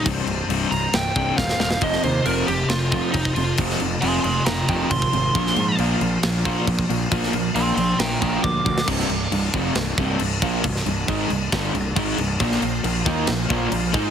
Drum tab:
CC |x-x-x-x-x-x-----|x-x-x-x-x-x-x-x-|x-x-x-x-x-x-x-x-|x-x-x-x-x-x-x-x-|
SD |--------o---oooo|-o------o-------|-o------o-------|-o------o-------|
BD |o---------o-o---|o---------o-oo--|o---------o-oo--|o---------o-oo--|

CC |x-x-x-x-x-x-----|x-x-x-x-x-x-x-x-|x-x-x-x-x-x-x-x-|x-x-x-x-x-x-x-x-|
SD |-o------o------o|-o------o-------|-o------o-------|-o------o-------|
BD |o---------o-o-o-|o-----o---o---o-|o---o---o---o---|o-----o---o---o-|